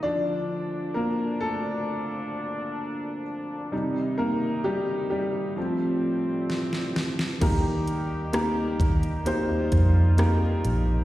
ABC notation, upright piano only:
X:1
M:4/4
L:1/8
Q:1/4=65
K:Eblyd
V:1 name="Upright piano"
d2 [B,B] [A,A]4 z | z [B,B] [G,G] [G,G]4 z | [B,EGB]2 [B,EGB]2 [B,EGc]2 [B,EGB]2 |]
V:2 name="Upright piano" clef=bass
[D,F,D]3 z4 z | [C,G,E]4 [F,A,C]3 z | E,3 z4 z |]